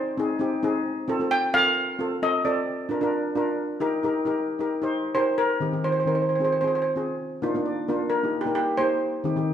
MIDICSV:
0, 0, Header, 1, 3, 480
1, 0, Start_track
1, 0, Key_signature, -3, "major"
1, 0, Tempo, 452489
1, 913, Time_signature, 4, 2, 24, 8
1, 10117, End_track
2, 0, Start_track
2, 0, Title_t, "Steel pan"
2, 0, Program_c, 0, 114
2, 0, Note_on_c, 0, 72, 87
2, 179, Note_off_c, 0, 72, 0
2, 1390, Note_on_c, 0, 79, 109
2, 1632, Note_on_c, 0, 77, 112
2, 1638, Note_off_c, 0, 79, 0
2, 2364, Note_on_c, 0, 75, 93
2, 2371, Note_off_c, 0, 77, 0
2, 2468, Note_off_c, 0, 75, 0
2, 2598, Note_on_c, 0, 74, 79
2, 4469, Note_off_c, 0, 74, 0
2, 5459, Note_on_c, 0, 72, 98
2, 5687, Note_off_c, 0, 72, 0
2, 5706, Note_on_c, 0, 70, 92
2, 6199, Note_on_c, 0, 72, 79
2, 6202, Note_off_c, 0, 70, 0
2, 6270, Note_off_c, 0, 72, 0
2, 6284, Note_on_c, 0, 72, 59
2, 6352, Note_off_c, 0, 72, 0
2, 6366, Note_on_c, 0, 72, 57
2, 6431, Note_off_c, 0, 72, 0
2, 6445, Note_on_c, 0, 72, 55
2, 6512, Note_off_c, 0, 72, 0
2, 6525, Note_on_c, 0, 72, 53
2, 6586, Note_off_c, 0, 72, 0
2, 6599, Note_on_c, 0, 72, 47
2, 6661, Note_off_c, 0, 72, 0
2, 6673, Note_on_c, 0, 72, 50
2, 6729, Note_off_c, 0, 72, 0
2, 6742, Note_on_c, 0, 72, 49
2, 6820, Note_off_c, 0, 72, 0
2, 6838, Note_on_c, 0, 72, 63
2, 6907, Note_off_c, 0, 72, 0
2, 6921, Note_on_c, 0, 72, 49
2, 6990, Note_off_c, 0, 72, 0
2, 7012, Note_on_c, 0, 72, 59
2, 7070, Note_off_c, 0, 72, 0
2, 7082, Note_on_c, 0, 72, 56
2, 7150, Note_off_c, 0, 72, 0
2, 7163, Note_on_c, 0, 72, 60
2, 7222, Note_off_c, 0, 72, 0
2, 7235, Note_on_c, 0, 72, 57
2, 7307, Note_off_c, 0, 72, 0
2, 8588, Note_on_c, 0, 70, 81
2, 8921, Note_on_c, 0, 67, 73
2, 8922, Note_off_c, 0, 70, 0
2, 9058, Note_off_c, 0, 67, 0
2, 9071, Note_on_c, 0, 67, 86
2, 9308, Note_on_c, 0, 72, 94
2, 9321, Note_off_c, 0, 67, 0
2, 9991, Note_off_c, 0, 72, 0
2, 10117, End_track
3, 0, Start_track
3, 0, Title_t, "Steel pan"
3, 0, Program_c, 1, 114
3, 186, Note_on_c, 1, 60, 86
3, 202, Note_on_c, 1, 63, 80
3, 208, Note_on_c, 1, 68, 96
3, 336, Note_off_c, 1, 60, 0
3, 344, Note_off_c, 1, 63, 0
3, 347, Note_off_c, 1, 68, 0
3, 416, Note_on_c, 1, 60, 91
3, 423, Note_on_c, 1, 63, 84
3, 435, Note_on_c, 1, 67, 96
3, 570, Note_off_c, 1, 60, 0
3, 574, Note_off_c, 1, 63, 0
3, 580, Note_off_c, 1, 67, 0
3, 665, Note_on_c, 1, 60, 94
3, 671, Note_on_c, 1, 63, 86
3, 680, Note_on_c, 1, 68, 98
3, 909, Note_off_c, 1, 60, 0
3, 912, Note_off_c, 1, 63, 0
3, 917, Note_off_c, 1, 68, 0
3, 1143, Note_on_c, 1, 60, 93
3, 1150, Note_on_c, 1, 65, 86
3, 1161, Note_on_c, 1, 69, 105
3, 1221, Note_off_c, 1, 60, 0
3, 1224, Note_off_c, 1, 65, 0
3, 1230, Note_off_c, 1, 69, 0
3, 1268, Note_on_c, 1, 60, 79
3, 1278, Note_on_c, 1, 65, 62
3, 1285, Note_on_c, 1, 69, 85
3, 1486, Note_off_c, 1, 60, 0
3, 1491, Note_off_c, 1, 65, 0
3, 1494, Note_off_c, 1, 69, 0
3, 1629, Note_on_c, 1, 60, 71
3, 1641, Note_on_c, 1, 65, 68
3, 1647, Note_on_c, 1, 69, 81
3, 1918, Note_off_c, 1, 60, 0
3, 1924, Note_off_c, 1, 65, 0
3, 1927, Note_off_c, 1, 69, 0
3, 2109, Note_on_c, 1, 60, 79
3, 2115, Note_on_c, 1, 65, 76
3, 2129, Note_on_c, 1, 69, 89
3, 2254, Note_off_c, 1, 60, 0
3, 2257, Note_off_c, 1, 65, 0
3, 2264, Note_off_c, 1, 69, 0
3, 2358, Note_on_c, 1, 60, 68
3, 2364, Note_on_c, 1, 65, 68
3, 2368, Note_on_c, 1, 69, 81
3, 2499, Note_off_c, 1, 60, 0
3, 2501, Note_off_c, 1, 65, 0
3, 2504, Note_off_c, 1, 69, 0
3, 2595, Note_on_c, 1, 60, 78
3, 2606, Note_on_c, 1, 65, 65
3, 2608, Note_on_c, 1, 69, 87
3, 2832, Note_off_c, 1, 60, 0
3, 2837, Note_off_c, 1, 65, 0
3, 2838, Note_off_c, 1, 69, 0
3, 3065, Note_on_c, 1, 62, 81
3, 3075, Note_on_c, 1, 65, 68
3, 3086, Note_on_c, 1, 70, 87
3, 3139, Note_off_c, 1, 62, 0
3, 3144, Note_off_c, 1, 65, 0
3, 3150, Note_off_c, 1, 70, 0
3, 3194, Note_on_c, 1, 62, 91
3, 3200, Note_on_c, 1, 65, 77
3, 3213, Note_on_c, 1, 70, 97
3, 3407, Note_off_c, 1, 62, 0
3, 3410, Note_off_c, 1, 65, 0
3, 3416, Note_off_c, 1, 70, 0
3, 3558, Note_on_c, 1, 62, 88
3, 3561, Note_on_c, 1, 65, 83
3, 3578, Note_on_c, 1, 70, 98
3, 3792, Note_off_c, 1, 62, 0
3, 3794, Note_off_c, 1, 65, 0
3, 3802, Note_off_c, 1, 70, 0
3, 4034, Note_on_c, 1, 63, 97
3, 4041, Note_on_c, 1, 67, 88
3, 4046, Note_on_c, 1, 70, 103
3, 4176, Note_off_c, 1, 63, 0
3, 4179, Note_off_c, 1, 67, 0
3, 4182, Note_off_c, 1, 70, 0
3, 4278, Note_on_c, 1, 63, 84
3, 4288, Note_on_c, 1, 67, 76
3, 4291, Note_on_c, 1, 70, 93
3, 4418, Note_off_c, 1, 63, 0
3, 4423, Note_off_c, 1, 67, 0
3, 4424, Note_off_c, 1, 70, 0
3, 4511, Note_on_c, 1, 63, 79
3, 4520, Note_on_c, 1, 67, 77
3, 4529, Note_on_c, 1, 70, 87
3, 4749, Note_off_c, 1, 63, 0
3, 4754, Note_off_c, 1, 67, 0
3, 4758, Note_off_c, 1, 70, 0
3, 4870, Note_on_c, 1, 63, 74
3, 4883, Note_on_c, 1, 67, 74
3, 4888, Note_on_c, 1, 70, 83
3, 5012, Note_off_c, 1, 63, 0
3, 5018, Note_off_c, 1, 67, 0
3, 5021, Note_off_c, 1, 70, 0
3, 5111, Note_on_c, 1, 63, 81
3, 5122, Note_on_c, 1, 67, 74
3, 5129, Note_on_c, 1, 72, 84
3, 5325, Note_off_c, 1, 63, 0
3, 5331, Note_off_c, 1, 67, 0
3, 5335, Note_off_c, 1, 72, 0
3, 5465, Note_on_c, 1, 63, 66
3, 5473, Note_on_c, 1, 67, 61
3, 5483, Note_on_c, 1, 70, 76
3, 5706, Note_off_c, 1, 63, 0
3, 5711, Note_off_c, 1, 67, 0
3, 5715, Note_off_c, 1, 70, 0
3, 5942, Note_on_c, 1, 51, 73
3, 5949, Note_on_c, 1, 60, 63
3, 5956, Note_on_c, 1, 63, 63
3, 5960, Note_on_c, 1, 67, 79
3, 6018, Note_off_c, 1, 51, 0
3, 6022, Note_off_c, 1, 60, 0
3, 6025, Note_off_c, 1, 63, 0
3, 6027, Note_off_c, 1, 67, 0
3, 6068, Note_on_c, 1, 51, 61
3, 6073, Note_on_c, 1, 60, 53
3, 6080, Note_on_c, 1, 63, 55
3, 6083, Note_on_c, 1, 67, 66
3, 6285, Note_off_c, 1, 51, 0
3, 6287, Note_off_c, 1, 60, 0
3, 6291, Note_off_c, 1, 63, 0
3, 6292, Note_off_c, 1, 67, 0
3, 6424, Note_on_c, 1, 51, 66
3, 6433, Note_on_c, 1, 60, 66
3, 6440, Note_on_c, 1, 63, 60
3, 6443, Note_on_c, 1, 70, 70
3, 6643, Note_off_c, 1, 51, 0
3, 6648, Note_off_c, 1, 60, 0
3, 6651, Note_off_c, 1, 63, 0
3, 6653, Note_off_c, 1, 70, 0
3, 6784, Note_on_c, 1, 60, 67
3, 6792, Note_on_c, 1, 65, 59
3, 6803, Note_on_c, 1, 68, 66
3, 6931, Note_off_c, 1, 60, 0
3, 6935, Note_off_c, 1, 65, 0
3, 6940, Note_off_c, 1, 68, 0
3, 7023, Note_on_c, 1, 60, 66
3, 7029, Note_on_c, 1, 65, 56
3, 7042, Note_on_c, 1, 68, 71
3, 7244, Note_off_c, 1, 60, 0
3, 7246, Note_off_c, 1, 65, 0
3, 7253, Note_off_c, 1, 68, 0
3, 7380, Note_on_c, 1, 60, 66
3, 7389, Note_on_c, 1, 65, 60
3, 7394, Note_on_c, 1, 68, 76
3, 7626, Note_off_c, 1, 60, 0
3, 7631, Note_off_c, 1, 65, 0
3, 7633, Note_off_c, 1, 68, 0
3, 7872, Note_on_c, 1, 58, 88
3, 7879, Note_on_c, 1, 62, 77
3, 7880, Note_on_c, 1, 63, 69
3, 7886, Note_on_c, 1, 65, 99
3, 7945, Note_off_c, 1, 58, 0
3, 7949, Note_off_c, 1, 62, 0
3, 7952, Note_off_c, 1, 65, 0
3, 8004, Note_on_c, 1, 58, 74
3, 8010, Note_on_c, 1, 62, 67
3, 8019, Note_on_c, 1, 65, 78
3, 8100, Note_off_c, 1, 63, 0
3, 8121, Note_on_c, 1, 74, 68
3, 8215, Note_off_c, 1, 58, 0
3, 8219, Note_off_c, 1, 62, 0
3, 8223, Note_off_c, 1, 65, 0
3, 8341, Note_off_c, 1, 74, 0
3, 8362, Note_on_c, 1, 58, 84
3, 8366, Note_on_c, 1, 70, 65
3, 8371, Note_on_c, 1, 62, 81
3, 8376, Note_on_c, 1, 65, 92
3, 8575, Note_off_c, 1, 58, 0
3, 8579, Note_off_c, 1, 62, 0
3, 8582, Note_off_c, 1, 65, 0
3, 8584, Note_off_c, 1, 70, 0
3, 8735, Note_on_c, 1, 58, 61
3, 8739, Note_on_c, 1, 63, 65
3, 8746, Note_on_c, 1, 67, 67
3, 8869, Note_off_c, 1, 58, 0
3, 8870, Note_off_c, 1, 63, 0
3, 8874, Note_off_c, 1, 67, 0
3, 8967, Note_on_c, 1, 58, 70
3, 8976, Note_on_c, 1, 63, 63
3, 8984, Note_on_c, 1, 70, 76
3, 9178, Note_off_c, 1, 58, 0
3, 9182, Note_off_c, 1, 63, 0
3, 9186, Note_off_c, 1, 70, 0
3, 9322, Note_on_c, 1, 58, 72
3, 9335, Note_on_c, 1, 63, 63
3, 9340, Note_on_c, 1, 67, 78
3, 9559, Note_off_c, 1, 58, 0
3, 9566, Note_off_c, 1, 63, 0
3, 9568, Note_off_c, 1, 67, 0
3, 9799, Note_on_c, 1, 51, 76
3, 9804, Note_on_c, 1, 60, 66
3, 9814, Note_on_c, 1, 63, 72
3, 9815, Note_on_c, 1, 67, 82
3, 9871, Note_off_c, 1, 51, 0
3, 9874, Note_off_c, 1, 60, 0
3, 9878, Note_off_c, 1, 63, 0
3, 9879, Note_off_c, 1, 67, 0
3, 9930, Note_on_c, 1, 51, 70
3, 9931, Note_on_c, 1, 60, 64
3, 9938, Note_on_c, 1, 63, 68
3, 9944, Note_on_c, 1, 67, 74
3, 10117, Note_off_c, 1, 51, 0
3, 10117, Note_off_c, 1, 60, 0
3, 10117, Note_off_c, 1, 63, 0
3, 10117, Note_off_c, 1, 67, 0
3, 10117, End_track
0, 0, End_of_file